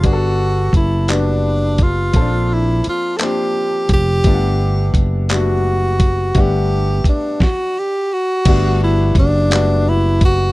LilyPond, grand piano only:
\new Staff \with { instrumentName = "Grand piano" } { \time 6/8 \key g \major \tempo 4. = 57 <g b d' fis' aes' a'>4 r8 <g b d' fis' b'>4 r8 | <f bes c' cis' d' a'>4 r8 <f bes c' d' c''>4 r8 | <g a b d' f' fis''>4 r8 <g a b d' fis'>4 r8 | <g a b d' fis''>4 r2 |
<g a b d' fis'>4 r8 <g a b d' fis'>4 r8 | }